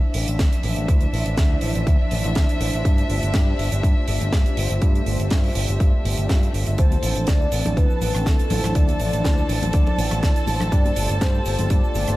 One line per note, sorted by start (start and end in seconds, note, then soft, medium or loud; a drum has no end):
0.00 0.36 F3 medium
0.00 0.36 D4 medium
0.00 6.80 D4 medium
0.00 0.37 E4 medium
0.00 0.37 C5 medium
0.00 6.80 E5 medium
0.14 0.24 A1 medium
0.14 open hi-hat loud
0.28 0.36 A1 medium
0.28 closed hi-hat medium
0.39 0.49 D2 medium
0.39 0.86 F3 medium
0.39 0.86 D4 medium
0.39 0.86 E4 medium
0.39 0.86 C5 medium
0.39 kick loud
0.39 snare loud
0.39 closed hi-hat medium
0.53 closed hi-hat medium
0.63 0.73 A1 medium
0.63 open hi-hat loud
0.76 0.85 A1 medium
0.76 closed hi-hat medium
0.88 1.06 D2 medium
0.88 2.33 F3 medium
0.88 2.33 D4 medium
0.88 2.33 E4 medium
0.88 2.34 C5 medium
0.88 kick loud
0.88 closed hi-hat medium
1.01 closed hi-hat soft
1.13 1.22 A1 medium
1.13 open hi-hat medium
1.26 1.34 A1 medium
1.26 closed hi-hat medium
1.38 1.55 D2 medium
1.38 kick loud
1.38 snare loud
1.38 closed hi-hat medium
1.61 1.72 A1 medium
1.61 open hi-hat loud
1.75 1.84 A1 medium
1.75 closed hi-hat medium
1.87 1.96 D2 medium
1.87 kick loud
1.87 closed hi-hat medium
2.11 2.21 A1 medium
2.11 open hi-hat loud
2.24 2.33 A1 medium
2.24 closed hi-hat medium
2.35 2.82 F3 medium
2.35 2.82 D4 medium
2.35 2.83 E4 medium
2.35 2.83 C5 medium
2.35 kick loud
2.35 snare loud
2.35 closed hi-hat medium
2.49 closed hi-hat soft
2.61 2.70 A1 medium
2.61 open hi-hat loud
2.73 2.82 A1 medium
2.73 closed hi-hat medium
2.84 3.03 G2 medium
2.84 4.30 A3 medium
2.84 4.30 F4 medium
2.84 4.30 G4 medium
2.84 4.31 C5 medium
2.84 kick loud
2.84 closed hi-hat medium
2.98 closed hi-hat soft
3.10 3.19 G1 medium
3.10 open hi-hat loud
3.23 3.31 G1 medium
3.23 closed hi-hat medium
3.34 3.52 G2 medium
3.34 kick loud
3.34 snare loud
3.34 closed hi-hat medium
3.59 3.68 G1 medium
3.59 open hi-hat loud
3.72 3.80 G1 medium
3.72 closed hi-hat medium
3.83 3.93 G2 medium
3.83 kick loud
3.83 closed hi-hat medium
4.08 4.17 G1 medium
4.08 open hi-hat loud
4.21 4.29 G1 loud
4.21 closed hi-hat medium
4.32 4.42 G2 medium
4.32 4.79 A3 medium
4.32 4.79 F4 medium
4.32 4.79 G4 medium
4.32 4.79 C5 medium
4.32 kick loud
4.32 snare loud
4.32 closed hi-hat medium
4.46 closed hi-hat medium
4.57 4.67 G1 loud
4.57 open hi-hat loud
4.70 4.78 G1 medium
4.70 closed hi-hat medium
4.81 5.00 G2 loud
4.81 6.02 A3 medium
4.81 6.02 F4 medium
4.81 6.03 G4 medium
4.81 6.03 C5 medium
4.81 kick loud
4.81 closed hi-hat medium
4.95 closed hi-hat soft
5.06 5.16 G1 medium
5.06 open hi-hat loud
5.19 5.28 G1 medium
5.19 closed hi-hat medium
5.30 5.49 G2 medium
5.30 kick loud
5.30 snare loud
5.30 closed hi-hat medium
5.44 open hi-hat medium
5.55 5.65 G1 medium
5.55 open hi-hat loud
5.68 5.77 G1 medium
5.68 closed hi-hat medium
5.80 5.89 G2 medium
5.80 kick loud
5.80 closed hi-hat medium
6.04 6.14 G1 medium
6.04 6.39 A3 loud
6.04 6.39 F4 medium
6.04 6.39 G4 medium
6.04 6.40 E5 loud
6.04 open hi-hat loud
6.18 6.26 G1 loud
6.18 closed hi-hat medium
6.29 6.47 G2 medium
6.29 kick loud
6.29 snare loud
6.29 closed hi-hat medium
6.42 6.76 A3 loud
6.42 6.76 F4 medium
6.42 6.76 G4 medium
6.42 6.76 C5 loud
6.42 closed hi-hat soft
6.54 6.63 G1 medium
6.54 open hi-hat loud
6.66 6.75 G1 medium
6.66 closed hi-hat medium
6.78 6.96 D2 medium
6.78 8.23 F3 medium
6.78 8.24 C4 medium
6.78 8.23 D4 medium
6.78 8.24 E4 medium
6.78 12.17 A4 medium
6.78 7.29 C5 loud
6.78 12.17 A5 medium
6.78 kick loud
6.78 closed hi-hat medium
6.78 shaker medium
6.91 closed hi-hat soft
6.91 high conga medium
6.91 shaker soft
7.03 7.12 A1 medium
7.03 open hi-hat loud
7.03 shaker medium
7.16 7.24 A1 medium
7.16 closed hi-hat medium
7.16 shaker soft
7.27 7.46 D2 medium
7.27 7.78 D5 loud
7.27 kick loud
7.27 snare loud
7.27 closed hi-hat medium
7.27 high conga medium
7.27 shaker soft
7.41 shaker soft
7.52 7.62 A1 medium
7.52 open hi-hat loud
7.52 shaker medium
7.65 7.74 A1 medium
7.65 closed hi-hat medium
7.65 high conga medium
7.65 low conga medium
7.65 shaker soft
7.77 7.86 D2 loud
7.77 8.27 B4 loud
7.77 kick loud
7.77 closed hi-hat medium
7.77 shaker soft
7.90 shaker soft
8.01 8.11 A1 medium
8.01 open hi-hat loud
8.01 high conga medium
8.01 shaker medium
8.15 8.23 A1 loud
8.15 cross-stick medium
8.15 closed hi-hat medium
8.15 shaker soft
8.25 8.72 F3 medium
8.25 8.73 D4 medium
8.25 8.73 E4 medium
8.25 8.74 A4 medium
8.25 8.73 C5 medium
8.25 kick loud
8.25 snare loud
8.25 closed hi-hat medium
8.25 shaker medium
8.39 closed hi-hat soft
8.39 muted conga soft
8.39 shaker soft
8.50 8.60 A1 loud
8.50 open hi-hat loud
8.50 high conga medium
8.50 low conga medium
8.50 shaker medium
8.64 8.72 A1 medium
8.64 cross-stick medium
8.64 closed hi-hat medium
8.64 muted conga medium
8.64 low conga medium
8.64 shaker soft
8.74 8.93 D2 medium
8.74 10.20 F3 medium
8.74 10.20 D4 medium
8.74 10.20 E4 medium
8.74 10.21 C5 medium
8.74 9.69 D5 loud
8.74 kick loud
8.74 closed hi-hat medium
8.74 shaker medium
8.88 closed hi-hat medium
8.88 high conga medium
8.88 shaker soft
9.00 9.09 A1 medium
9.00 open hi-hat loud
9.00 shaker medium
9.13 9.21 A1 medium
9.13 closed hi-hat medium
9.13 shaker soft
9.24 9.42 D2 medium
9.24 kick loud
9.24 snare loud
9.24 closed hi-hat medium
9.24 high conga medium
9.24 shaker soft
9.38 shaker soft
9.49 9.58 A1 medium
9.49 open hi-hat loud
9.49 shaker medium
9.62 9.70 A1 medium
9.62 closed hi-hat medium
9.62 high conga medium
9.62 low conga medium
9.62 shaker soft
9.73 9.83 D2 medium
9.73 10.43 D5 loud
9.73 kick loud
9.73 closed hi-hat loud
9.73 shaker medium
9.87 muted conga medium
9.87 low conga medium
9.87 shaker soft
9.98 10.08 A1 medium
9.98 open hi-hat loud
9.98 high conga medium
9.98 shaker medium
10.11 10.20 A1 loud
10.11 cross-stick medium
10.11 closed hi-hat medium
10.11 muted conga soft
10.11 shaker soft
10.23 10.69 F3 medium
10.23 10.69 D4 medium
10.23 10.69 E4 medium
10.23 10.70 C5 loud
10.23 kick loud
10.23 snare loud
10.23 closed hi-hat medium
10.23 shaker soft
10.36 closed hi-hat medium
10.36 shaker soft
10.47 10.57 A1 loud
10.47 open hi-hat medium
10.47 muted conga medium
10.47 high conga medium
10.47 shaker medium
10.60 10.69 A1 medium
10.60 cross-stick medium
10.60 closed hi-hat medium
10.60 low conga medium
10.60 shaker soft
10.71 10.90 G2 medium
10.71 12.16 A3 medium
10.71 12.17 F4 medium
10.71 12.17 G4 medium
10.71 12.17 C5 medium
10.71 11.18 D5 loud
10.71 kick loud
10.71 closed hi-hat medium
10.71 shaker medium
10.85 closed hi-hat medium
10.85 high conga medium
10.85 shaker soft
10.96 11.06 G1 medium
10.96 open hi-hat loud
10.96 shaker loud
11.09 11.18 G1 medium
11.09 closed hi-hat medium
11.09 shaker soft
11.21 11.39 G2 medium
11.21 11.72 C5 medium
11.21 kick loud
11.21 snare loud
11.21 closed hi-hat medium
11.21 high conga medium
11.21 shaker medium
11.34 shaker soft
11.45 11.55 G1 medium
11.45 open hi-hat loud
11.45 shaker medium
11.59 11.67 G1 medium
11.59 closed hi-hat medium
11.59 high conga medium
11.59 low conga medium
11.59 shaker soft
11.70 11.80 G2 loud
11.70 12.17 D5 loud
11.70 kick loud
11.70 closed hi-hat medium
11.70 shaker medium
11.84 shaker soft
11.95 12.04 G1 medium
11.95 open hi-hat medium
11.95 high conga medium
11.95 shaker medium
12.08 12.16 G1 loud
12.08 cross-stick medium
12.08 closed hi-hat medium
12.08 shaker soft